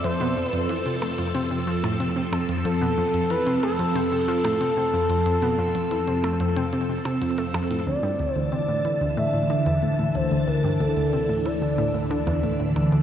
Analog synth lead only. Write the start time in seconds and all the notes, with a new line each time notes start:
0.04 C5
0.47 B4
2.65 A4
3.30 B4
3.63 A4
7.87 D5
8.33 C5
8.52 D5
9.17 E5
10.15 C5
10.48 A#4
10.81 A4
11.46 D5